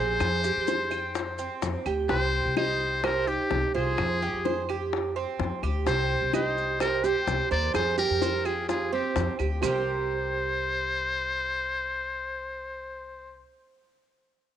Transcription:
Already playing: A#1 G#4 C5
0.20 F2, high bongo, claves, maracas
0.44 G4, high bongo, maracas
0.56 F2
0.67 C5, high bongo, maracas
0.91 G5, high bongo, claves, maracas
1.15 high bongo, maracas
1.38 C4, maracas
1.62 F2, high bongo, low bongo, maracas
1.86 D2 G4, high bongo, claves, maracas
2.09 C2 C4 G4 C5, high bongo
2.45 C2
2.57 D#4 G4 C5, high bongo, claves
3.04 G4 A#4 C5, high bongo, claves
3.27 D#4 G4
3.51 C2, high bongo, low bongo
3.75 C2 F4 G#4 C5
3.98 F2, high bongo, claves
4.22 G4, high bongo
4.34 F2
4.45 C5, high bongo
4.69 G4, high bongo, claves
4.93 high bongo
5.16 C4
5.39 F2, high bongo, low bongo
5.63 D2 G4, high bongo, claves
5.86 C2 C4 G4 C5, high bongo, maracas
6.21 C2
6.33 D#4 G4 C5, high bongo, claves, maracas
6.58 maracas
6.80 G4 A#4 C5, high bongo, claves, maracas
7.04 G4 C5, maracas
7.27 C2, high bongo, low bongo, maracas
7.51 D#2 A#4 C5 D5, maracas
7.74 F2 G#4 C5, high bongo, claves, maracas
7.98 G4 A#4, high bongo, maracas
8.10 F2
8.22 C5, high bongo, maracas
8.45 F4 G4 G#4, high bongo, claves, maracas
8.69 F4 G#4, high bongo, maracas
8.92 C4 G4
9.16 F2, high bongo, low bongo, maracas
9.39 D2 G4, high bongo, claves, maracas
9.62 C2 C4 G4 A#4 C5, low bongo, claves, maracas

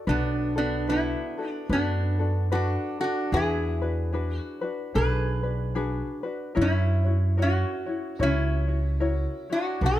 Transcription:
0.07 B1 B3 D4 F#4 A4 B4
0.56 B3 D4 F#4 A4
0.89 B3 D4 E4 F#4 A4 B4
1.38 D4 F#4 A4
1.50 D4
1.69 F#2 D4 F#4 A4 B4
1.74 B3
2.19 D4 F#4 A4
2.52 D4 F#4 A4 B4
3.00 D4 F#4 A4
3.32 E2 D4 F#4 G#4 B4
3.37 E4
3.82 D4 F#4 B4
4.12 D4 F#4 G#4 B4
4.39 F#4
4.61 D4 F#4 B4
4.94 B1 D4 F#4 G#4 B4
5.43 D4 F#4 B4
5.75 D4 F#4 G#4 B4
6.23 D4 F#4 B4
6.55 F#2 E4 F#4 A#4 C#5
6.61 C#4 E4
7.04 E4 F#4 C#5
7.37 E4 F#4 A#4 C#5
7.42 C#4 F#4
7.86 E4 F#4 C#5
8.19 C#2 E4 F#4 A#4 C#5
8.23 C#4
8.67 E4 F#4 C#5
9.00 E4 F#4 A#4 C#5
9.50 E4 F#4 C#5
9.54 D4
9.81 B1 D4 F#4 A4 B4
9.86 F#4 B4

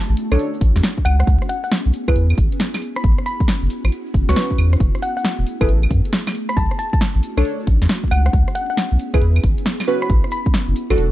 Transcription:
Already playing: A3 C#4 D4 F#4
0.09 A1, cabasa
0.17 closed hi-hat, cabasa
0.31 B1 D4 A4 C#5, cross-stick, closed hi-hat, cabasa, claves
0.39 closed hi-hat, cabasa
0.54 cabasa
0.61 A1, kick, closed hi-hat, cabasa
0.75 E2, snare, closed hi-hat, cabasa
0.83 snare, closed hi-hat, cabasa
0.97 kick, cabasa
1.05 C#2 B3 E4 G#4 F#5, closed hi-hat, cabasa, claves
1.20 F#5, cross-stick, cabasa
1.27 C#2, kick, closed hi-hat, cabasa
1.42 cross-stick, cabasa
1.49 F#5, closed hi-hat, cabasa
1.64 F#5, cabasa
1.72 snare, closed hi-hat, cabasa
1.85 B1, cabasa
1.93 closed hi-hat, cabasa
2.08 C#2 E4 G#4 B4, kick, cross-stick, closed hi-hat, cabasa, claves
2.16 E2, closed hi-hat, cabasa
2.30 cabasa, claves
2.37 G#1, kick, closed hi-hat, cabasa
2.52 closed hi-hat, cabasa
2.60 snare, closed hi-hat, cabasa
2.74 snare, cabasa, claves
2.82 C#4 F#4, closed hi-hat, cabasa
2.96 B5, cross-stick, cabasa
3.04 A1, kick, closed hi-hat, cabasa
3.17 cross-stick, cabasa
3.26 B5, closed hi-hat, cabasa
3.40 kick, cabasa
3.48 snare, closed hi-hat, cabasa
3.62 F#1, cabasa
3.70 closed hi-hat, cabasa
3.84 A1, cross-stick, closed hi-hat, cabasa, claves
3.92 closed hi-hat, cabasa
4.06 cabasa
4.14 F#1, kick, closed hi-hat, cabasa
4.29 C#2 C#4 F#4 B4 C#6, snare, closed hi-hat, cabasa
4.36 snare, closed hi-hat, cabasa
4.51 kick, cabasa
4.58 E2, closed hi-hat, cabasa, claves
4.73 cross-stick, cabasa
4.80 F#1 A3 G#4, kick, closed hi-hat, cabasa
4.95 cross-stick, cabasa
5.02 F#5, closed hi-hat, cabasa
5.17 F#5, cabasa
5.25 snare, closed hi-hat, cabasa
5.38 E1, cabasa
5.47 closed hi-hat, cabasa
5.61 F#1 E4 G#4 A4 B4, kick, cross-stick, closed hi-hat, cabasa, claves
5.68 A1, closed hi-hat, cabasa
5.83 cabasa, claves
5.91 F#2, kick, closed hi-hat, cabasa
6.05 closed hi-hat, cabasa
6.13 snare, closed hi-hat, cabasa
6.27 snare, cabasa, claves
6.34 A3 C#4 D4 F#4, closed hi-hat, cabasa
6.49 B5, cross-stick, cabasa
6.57 B1 A5, kick, closed hi-hat, cabasa
6.71 cross-stick, cabasa
6.79 A5, closed hi-hat, cabasa
6.93 A5, kick, cabasa
7.01 snare, closed hi-hat, cabasa
7.15 A1, cabasa
7.23 closed hi-hat, cabasa
7.37 B1 D4 A4 C#5, cross-stick, closed hi-hat, cabasa, claves
7.44 closed hi-hat, cabasa
7.60 cabasa
7.67 A1, kick, closed hi-hat, cabasa
7.81 E2, snare, closed hi-hat, cabasa
7.89 snare, closed hi-hat, cabasa
8.04 kick, cabasa
8.11 C#2 B3 E4 G#4 F#5, closed hi-hat, cabasa, claves
8.26 F#5, cross-stick, cabasa
8.33 C#2, kick, closed hi-hat, cabasa
8.48 cross-stick, cabasa
8.55 F#5, closed hi-hat, cabasa
8.70 F#5, cabasa
8.77 snare, closed hi-hat, cabasa
8.92 B1, cabasa
8.99 closed hi-hat, cabasa
9.14 C#2 E4 G#4 B4, kick, cross-stick, closed hi-hat, cabasa, claves
9.22 E2, closed hi-hat, cabasa
9.36 cabasa, claves
9.44 G#1, kick, closed hi-hat, cabasa
9.57 closed hi-hat, cabasa
9.65 snare, closed hi-hat, cabasa
9.79 snare, cabasa, claves
9.87 C#4 F#4 B4, closed hi-hat, cabasa
10.01 B5, cross-stick, cabasa
10.09 A1, kick, closed hi-hat, cabasa
10.24 cross-stick, cabasa
10.31 B5, closed hi-hat, cabasa
10.46 kick, cabasa
10.54 snare, closed hi-hat, cabasa
10.68 F#1, cabasa
10.76 closed hi-hat, cabasa
10.90 A1 D4 F#4 A4, cross-stick, closed hi-hat, cabasa, claves
10.98 E1 A3 D4, closed hi-hat, cabasa

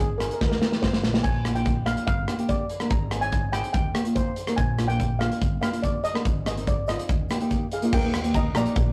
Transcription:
Already playing: G#1 G#4
0.00 shaker
0.18 C4 D#4 G#4 A#4, cross-stick, closed hi-hat, shaker
0.26 A#4
0.31 A#4, closed hi-hat
0.41 D#2 A#4, kick, snare, shaker
0.49 A#4, snare
0.57 A#3 A#4
0.62 D#4 G4 A#4, snare, shaker
0.71 A#3 D#4 G4, snare
0.82 G1 C5, kick, snare, shaker
0.93 snare
1.03 A#1, snare, shaker
1.13 A#3 D#4 G4, snare
1.23 A#1 G#5, kick, closed hi-hat, splash, shaker
1.45 A#3 D4 F4, cross-stick, closed hi-hat, shaker
1.54 A#3 D4 F4 G5, closed hi-hat, shaker
1.65 kick, closed hi-hat, shaker
1.85 A#3 D4 F4 F5, cross-stick, closed hi-hat, shaker
1.97 closed hi-hat, shaker
2.07 G1 F5, kick, closed hi-hat, shaker
2.27 A#3 D4 G4, cross-stick, closed hi-hat, shaker
2.37 A#3 D4 G4, closed hi-hat
2.49 D5, kick, closed hi-hat, shaker
2.70 closed hi-hat, shaker
2.80 A#3 D4 A#4, cross-stick, closed hi-hat, shaker
2.90 G#1 A#5, kick, closed hi-hat, shaker
3.10 C4 D#4 G#4, cross-stick, closed hi-hat, shaker
3.21 C4 D#4 G#4 G#5, closed hi-hat
3.32 kick, closed hi-hat, shaker
3.52 C4 D#4 G#4 G5, cross-stick, closed hi-hat, shaker
3.64 closed hi-hat
3.73 D#2 G5, kick, closed hi-hat, shaker
3.94 A#3 D#4 G4, cross-stick, closed hi-hat, shaker
4.04 A#3 D#4 F4, closed hi-hat
4.15 C5, kick, closed hi-hat, shaker
4.36 closed hi-hat, shaker
4.47 A#3 D#4 A#4, cross-stick, closed hi-hat
4.56 A#1 G#5, kick, closed hi-hat, shaker
4.78 A#3 D4 F4, cross-stick, closed hi-hat, shaker
4.88 A#3 D4 F4 G5, closed hi-hat, shaker
5.00 kick, closed hi-hat, shaker
5.19 A#3 D4 F4 F5, cross-stick, closed hi-hat
5.32 closed hi-hat, shaker
5.41 G1, kick, closed hi-hat, shaker
5.61 A#3 D4 G4 F5, cross-stick, closed hi-hat, shaker
5.71 A#3 D4 F4, closed hi-hat
5.83 D5, kick, closed hi-hat, shaker
6.04 D#5, closed hi-hat, shaker
6.13 A#3 D4 A#4, cross-stick, closed hi-hat, shaker
6.25 G#1, kick, closed hi-hat, shaker
6.46 C4 D#4 G#4 D#5, cross-stick, closed hi-hat, shaker
6.57 C4 D#4 A#4, closed hi-hat
6.67 D5, kick, closed hi-hat, shaker
6.88 C4 D#4 F4 D#5, cross-stick, closed hi-hat, shaker
6.98 closed hi-hat, shaker
7.08 D#2, kick, closed hi-hat, shaker
7.29 A#3 D#4 G4, cross-stick, closed hi-hat, shaker
7.40 A#3 D#4 G4, closed hi-hat
7.51 kick, closed hi-hat, shaker
7.72 G#4 F5, closed hi-hat, shaker
7.82 A#3 D#4 F4, closed hi-hat
7.93 D#2 A#4 G5, kick, crash, shaker
8.03 A#3 D#4 G4
8.14 cross-stick, closed hi-hat, shaker
8.23 A#3 D#4 G4, closed hi-hat, shaker
8.34 D#5 A#5, kick, closed hi-hat, shaker
8.55 A#1 A#3 D#4 G4 D5 A#5, cross-stick, closed hi-hat, shaker
8.66 closed hi-hat
8.76 A#1, kick, closed hi-hat, shaker

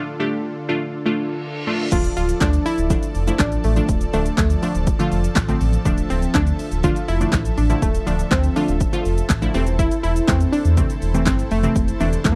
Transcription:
Already playing: D3 A3 D4 F4 A4
0.20 A3 D4 G4
0.69 A3 D4 F4
0.94 reverse cymbal
1.06 A3 D4 F4
1.67 A3 D4 F4 A4
1.92 D1 D3 F3 A3 D4 F4 A4 D5 A5, kick, closed hi-hat, crash, shaker
2.04 closed hi-hat, shaker
2.17 D1 F4, open hi-hat, shaker
2.29 closed hi-hat, shaker
2.41 D2 D3 F3 A3 D4, kick, snare, clap, closed hi-hat, shaker
2.53 closed hi-hat, shaker
2.66 E4, open hi-hat, shaker
2.78 D1, closed hi-hat, shaker
2.90 D3 F3 A3 D4, kick, closed hi-hat, shaker
3.03 closed hi-hat, shaker
3.15 F1, open hi-hat, shaker
3.27 D3 F3 A3 E4, closed hi-hat, shaker
3.39 A1 D4, kick, snare, clap, closed hi-hat, shaker
3.52 closed hi-hat, shaker
3.64 A1 A3, open hi-hat, shaker
3.76 D3 F3 A3 D4, closed hi-hat, shaker
3.89 D1, kick, closed hi-hat, shaker
4.01 closed hi-hat, shaker
4.13 D1 D3 F3 A3 D4, open hi-hat, shaker
4.26 closed hi-hat, shaker
4.37 D2 A3, kick, snare, clap, closed hi-hat, shaker
4.50 closed hi-hat, shaker
4.62 D3 F3 A3 D4, open hi-hat, shaker
4.75 D1, closed hi-hat, shaker
4.87 kick, closed hi-hat, shaker
4.99 D3 F3 A3 F4, closed hi-hat, shaker
5.12 F1, open hi-hat, shaker
5.24 closed hi-hat, shaker
5.35 A1, kick, snare, clap, closed hi-hat, shaker
5.48 D3 F3 A3 C4, closed hi-hat, shaker
5.61 A1, open hi-hat, shaker
5.73 closed hi-hat, shaker
5.85 D1 D3 F3 A3 D4 E5, kick, closed hi-hat, shaker
5.98 closed hi-hat, shaker
6.10 D1 C4, open hi-hat, shaker
6.22 closed hi-hat, shaker
6.34 D2 D3 F3 A3 D4, kick, snare, clap, closed hi-hat, shaker
6.47 closed hi-hat, shaker
6.59 open hi-hat, shaker
6.71 D1, closed hi-hat, shaker
6.83 D3 F3 A3 D4 F4, kick, closed hi-hat, shaker
6.96 closed hi-hat, shaker
7.08 F1 E4, open hi-hat, shaker
7.20 D3 F3 A3 D4, closed hi-hat, shaker
7.32 A1, kick, snare, clap, closed hi-hat, shaker
7.45 closed hi-hat, shaker
7.58 A1 D4, open hi-hat, shaker
7.70 D3 F3 A3 E4, closed hi-hat, shaker
7.82 D1 A3, kick, closed hi-hat, shaker
7.95 closed hi-hat, shaker
8.06 D1 D3 F3 A3 D4, open hi-hat, shaker
8.19 closed hi-hat, shaker
8.31 D2 C4, kick, snare, clap, closed hi-hat, shaker
8.44 closed hi-hat, shaker
8.56 D3 F3 A3 D4 F4, open hi-hat, shaker
8.68 D1, closed hi-hat, shaker
8.80 kick, closed hi-hat, shaker
8.93 D3 F3 A3 F4, closed hi-hat, shaker
9.05 F1, open hi-hat, shaker
9.18 closed hi-hat, shaker
9.29 A1, kick, snare, clap, closed hi-hat, shaker
9.42 D3 F3 A3 E4, closed hi-hat, shaker
9.54 E1 C3 E3 A3 C4 E4 C5 A5, open hi-hat, shaker
9.66 closed hi-hat, shaker
9.79 E4, kick, closed hi-hat, shaker
9.91 closed hi-hat, shaker
10.03 E1 E4, open hi-hat, shaker
10.16 closed hi-hat, shaker
10.28 E2 C3 E3 A3 C4, kick, snare, clap, closed hi-hat, shaker
10.40 closed hi-hat, shaker
10.53 D4, open hi-hat, shaker
10.65 E2, closed hi-hat, shaker
10.77 C3 E3 A3 C4, kick, closed hi-hat, shaker
10.90 closed hi-hat, shaker
11.02 E1, open hi-hat, shaker
11.14 C3 E3 A3 C4, closed hi-hat, shaker
11.26 G1 C4, kick, snare, clap, closed hi-hat, shaker
11.39 closed hi-hat, shaker
11.51 F1 A3, open hi-hat, shaker
11.63 C3 E3 A3 C4, closed hi-hat, shaker
11.76 E1, kick, closed hi-hat, shaker
11.88 closed hi-hat, shaker
12.00 E1 C3 E3 A3 D4, open hi-hat, shaker
12.13 closed hi-hat, shaker
12.24 E2 A3, kick, snare, clap, closed hi-hat, shaker
12.32 A#3

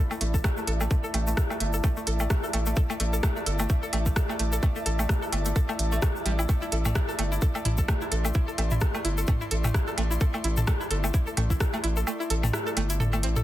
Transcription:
Already playing: A3 E4 D5 E5 B5
0.11 A3, low woodblock, shaker
0.20 A1 A3 A5, closed hi-hat
0.34 A4, kick, shaker
0.44 A3, kick, cross-stick, low woodblock, shaker
0.57 A3, shaker
0.67 A1 A4, closed hi-hat
0.81 A3, low woodblock, shaker
0.91 A3, kick, shaker
1.04 A4, shaker
1.14 A1 A3, closed hi-hat, low woodblock
1.27 A3, shaker
1.37 A4, kick, cross-stick, shaker
1.50 A3, low woodblock, shaker
1.60 G1 A3, closed hi-hat
1.73 A4, shaker
1.84 A3, kick, low woodblock, shaker
1.97 A3, shaker
2.07 A1 A4, closed hi-hat
2.19 A3, low woodblock, shaker
2.30 A3, kick, cross-stick, shaker
2.43 A4, shaker
2.53 A1 A3, closed hi-hat, low woodblock
2.66 A3, shaker
2.76 A4, kick, shaker
2.90 A3, low woodblock, shaker
3.00 A1 A3, closed hi-hat
3.13 A4, shaker
3.23 A3, kick, cross-stick, low woodblock, shaker
3.36 A3, shaker
3.46 G1 A4, closed hi-hat
3.59 A3, low woodblock, shaker
3.69 A3, kick, shaker
3.83 A4, shaker
3.93 A1 A3, closed hi-hat, low woodblock
4.06 A3, kick, shaker
4.16 A4, kick, cross-stick, shaker
4.29 A3, low woodblock, shaker
4.39 A1 A3, closed hi-hat
4.53 A4, shaker
4.63 A3, kick, low woodblock, shaker
4.76 A3, shaker
4.86 A1 A4, closed hi-hat
4.99 A3, low woodblock, shaker
5.09 A3, kick, cross-stick, shaker
5.22 A4, shaker
5.32 G1 A3, closed hi-hat, low woodblock
5.45 A3, closed hi-hat, shaker
5.56 A4, kick, shaker
5.69 A3, low woodblock, shaker
5.79 A1, closed hi-hat
5.92 A3, shaker
6.02 A3, kick, cross-stick, low woodblock, shaker
6.16 shaker
6.26 A1 G3, closed hi-hat
6.39 E4, low woodblock, shaker
6.49 A3, kick, low woodblock, shaker
6.62 E4, shaker
6.72 A1 A4, closed hi-hat
6.85 A3, mid tom, low woodblock, shaker
6.95 E4, kick, cross-stick, shaker
7.09 A4, shaker
7.19 G1 A3, closed hi-hat, low woodblock
7.32 E4, shaker
7.41 A4, kick, shaker
7.55 A3, low woodblock, shaker
7.65 A1 E4 C6, closed hi-hat, mid tom
7.77 A4, kick, shaker
7.88 A3, kick, cross-stick, low woodblock, shaker
8.01 E4, shaker
8.12 A1 A4, closed hi-hat
8.25 A3, low woodblock, shaker
8.33 E4, kick, shaker
8.48 A4, shaker
8.58 A1 A3, closed hi-hat, low woodblock
8.70 E4, mid tom, shaker
8.81 A4, kick, cross-stick, shaker
8.95 A3, low woodblock, shaker
9.05 G1 E4, closed hi-hat
9.18 A4, shaker
9.27 A3, kick, mid tom, low woodblock, shaker
9.41 E4, shaker
9.51 A1 A4, closed hi-hat
9.64 A3, mid tom, low woodblock, shaker
9.74 E4, kick, cross-stick, shaker
9.88 A4, shaker
9.98 A1 A3, closed hi-hat, low woodblock
10.11 E4, shaker
10.21 A4, kick, shaker
10.34 A3, low woodblock, shaker
10.44 A1 E4, closed hi-hat
10.57 A4, mid tom, shaker
10.67 A3, kick, cross-stick, low woodblock, shaker
10.81 E4, shaker
10.91 G1 A4, closed hi-hat
11.04 A3, low woodblock, shaker
11.14 E4, kick, shaker
11.27 A4, shaker
11.37 A1 A3, closed hi-hat, mid tom, low woodblock
11.50 E4, kick, shaker
11.60 A4, kick, cross-stick, shaker
11.73 A3, low woodblock, shaker
11.84 A1 E4, closed hi-hat
11.96 A4, shaker
12.07 A3, low woodblock, shaker
12.20 E4, shaker
12.30 A1 A4, closed hi-hat
12.43 A3, mid tom, low woodblock, shaker
12.53 E4, cross-stick, shaker
12.67 A4, shaker
12.77 G1 A3, closed hi-hat, low woodblock
12.90 E4, closed hi-hat, shaker
13.00 A4, mid tom, shaker
13.13 A3, low woodblock, shaker
13.23 A1 C4, closed hi-hat
13.36 A4, mid tom, shaker

